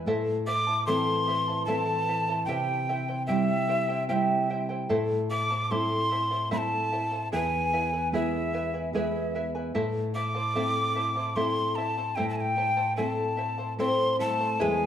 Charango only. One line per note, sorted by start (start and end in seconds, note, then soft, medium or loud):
0.07 0.46 E4 medium
0.07 0.47 A4 medium
0.07 0.47 C5 medium
0.07 0.46 E5 medium
0.07 0.47 A5 medium
0.47 0.67 E4 medium
0.47 0.67 C5 medium
0.47 0.67 E5 medium
0.47 0.66 A5 medium
0.67 0.86 E4 soft
0.67 0.87 C5 soft
0.67 0.87 A5 medium
0.87 1.27 E4 medium
0.87 1.27 A4 medium
0.87 1.27 C5 medium
0.87 1.26 E5 medium
0.87 1.28 A5 medium
1.27 1.48 E4 medium
1.27 1.47 C5 medium
1.27 1.47 E5 medium
1.27 1.47 A5 medium
1.48 1.67 E4 soft
1.48 1.67 C5 soft
1.48 1.67 A5 soft
1.67 2.08 E4 medium
1.67 2.08 A4 medium
1.67 2.08 C5 medium
1.67 2.07 E5 medium
1.67 2.08 A5 medium
2.08 2.28 E4 medium
2.08 2.28 C5 medium
2.08 2.28 E5 soft
2.08 2.27 A5 medium
2.28 2.48 E4 soft
2.28 2.48 C5 soft
2.28 2.48 A5 soft
2.48 2.88 E4 medium
2.48 2.89 G4 medium
2.48 2.89 C5 medium
2.48 2.88 E5 medium
2.48 2.89 G5 medium
2.89 3.09 E4 medium
2.89 3.08 C5 medium
2.89 3.09 E5 medium
2.89 3.07 G5 medium
3.08 3.27 E4 soft
3.08 3.28 C5 soft
3.08 3.27 G5 soft
3.28 3.67 E4 medium
3.28 3.69 G4 medium
3.28 3.68 C5 medium
3.28 3.67 E5 medium
3.28 3.68 G5 medium
3.68 3.89 E4 medium
3.68 3.88 C5 medium
3.68 3.89 E5 soft
3.68 3.87 G5 medium
3.89 4.08 E4 soft
3.89 4.08 C5 soft
3.89 4.08 G5 soft
4.09 4.49 E4 medium
4.09 4.49 G4 medium
4.09 4.49 C5 medium
4.09 4.48 E5 medium
4.09 4.49 G5 medium
4.49 4.70 E4 medium
4.49 4.69 C5 medium
4.49 4.70 E5 soft
4.49 4.68 G5 medium
4.69 4.89 E4 soft
4.69 4.89 C5 soft
4.69 4.90 G5 soft
4.89 5.30 E4 medium
4.89 5.30 A4 medium
4.89 5.30 C5 medium
4.89 5.29 E5 medium
4.89 5.30 A5 medium
5.31 5.51 E4 medium
5.31 5.50 C5 medium
5.31 5.51 E5 medium
5.31 5.49 A5 medium
5.50 5.70 E4 soft
5.50 5.70 C5 soft
5.50 5.70 A5 soft
5.71 6.11 E4 medium
5.71 6.11 A4 medium
5.71 6.11 C5 medium
5.71 6.10 E5 medium
5.71 6.11 A5 medium
6.11 6.31 E4 medium
6.11 6.30 C5 medium
6.11 6.31 E5 medium
6.11 6.30 A5 medium
6.31 6.50 E4 soft
6.31 6.50 C5 soft
6.31 6.51 A5 soft
6.51 6.92 E4 medium
6.51 6.91 A4 medium
6.51 6.92 C5 medium
6.51 6.91 E5 medium
6.51 6.92 A5 medium
6.92 7.12 E4 medium
6.92 7.11 C5 medium
6.92 7.12 E5 soft
6.92 7.10 A5 medium
7.12 7.32 E4 soft
7.12 7.32 C5 soft
7.12 7.32 A5 soft
7.32 7.72 E4 medium
7.32 7.72 G#4 medium
7.32 7.73 B4 medium
7.32 7.72 E5 medium
7.32 7.73 G#5 medium
7.73 7.93 E4 medium
7.73 7.92 B4 medium
7.73 7.93 E5 medium
7.73 7.91 G#5 medium
7.93 8.12 E4 soft
7.93 8.13 B4 soft
7.93 8.13 G#5 medium
8.13 8.53 E4 medium
8.13 8.54 G#4 medium
8.13 8.53 B4 medium
8.13 8.52 E5 medium
8.13 8.53 G#5 medium
8.53 8.74 E4 medium
8.53 8.73 B4 medium
8.53 8.73 E5 medium
8.53 8.73 G#5 medium
8.74 8.93 E4 soft
8.74 8.94 B4 soft
8.74 8.94 G#5 soft
8.95 9.35 E4 medium
8.95 9.35 G#4 medium
8.95 9.34 B4 medium
8.95 9.34 E5 medium
8.95 9.35 G#5 medium
9.35 9.55 E4 medium
9.35 9.54 B4 medium
9.35 9.55 E5 medium
9.35 9.54 G#5 medium
9.55 9.73 E4 soft
9.55 9.74 B4 soft
9.55 9.75 G#5 medium
9.75 10.14 E4 medium
9.75 10.15 A4 medium
9.75 10.14 C5 medium
9.75 10.13 E5 medium
9.75 10.15 A5 medium
10.15 10.35 E4 medium
10.15 10.34 C5 medium
10.15 10.35 E5 medium
10.15 10.34 A5 medium
10.35 10.55 E4 soft
10.35 10.55 C5 soft
10.35 10.55 A5 soft
10.55 10.94 E4 medium
10.55 10.96 A4 medium
10.55 10.95 C5 medium
10.55 10.94 E5 medium
10.55 10.95 A5 medium
10.95 11.16 E4 medium
10.95 11.15 C5 medium
10.95 11.16 E5 medium
10.95 11.15 A5 medium
11.16 11.35 E4 soft
11.16 11.36 C5 soft
11.16 11.36 A5 soft
11.36 11.77 E4 medium
11.36 11.77 A4 medium
11.36 11.77 C5 medium
11.36 11.76 E5 medium
11.36 11.77 A5 medium
11.77 11.97 E4 medium
11.77 11.97 C5 medium
11.77 11.97 E5 medium
11.77 11.96 A5 medium
11.97 12.16 E4 soft
11.97 12.16 C5 soft
11.97 12.16 A5 soft
12.17 12.56 E4 medium
12.17 12.57 A4 medium
12.17 12.56 C5 medium
12.17 12.55 E5 medium
12.17 12.57 A5 medium
12.56 12.77 E4 medium
12.56 12.76 C5 medium
12.56 12.77 E5 medium
12.56 12.76 A5 medium
12.77 12.96 E4 soft
12.77 12.97 C5 soft
12.77 12.97 A5 soft
12.97 13.36 E4 medium
12.97 13.38 A4 medium
12.97 13.37 C5 medium
12.97 13.36 E5 medium
12.97 13.37 A5 medium
13.37 13.58 E4 medium
13.37 13.57 C5 medium
13.37 13.58 E5 medium
13.37 13.57 A5 medium
13.58 13.78 E4 soft
13.58 13.78 C5 soft
13.58 13.78 A5 soft
13.79 14.18 E4 medium
13.79 14.19 A4 medium
13.79 14.19 C5 medium
13.79 14.18 E5 medium
13.79 14.19 A5 medium
14.19 14.39 E4 medium
14.19 14.39 C5 medium
14.19 14.39 E5 medium
14.19 14.38 A5 medium
14.39 14.59 E4 soft
14.39 14.59 C5 soft
14.39 14.59 A5 medium
14.59 14.86 E4 medium
14.59 14.86 G#4 medium
14.59 14.86 B4 medium
14.59 14.86 E5 medium
14.59 14.86 G#5 medium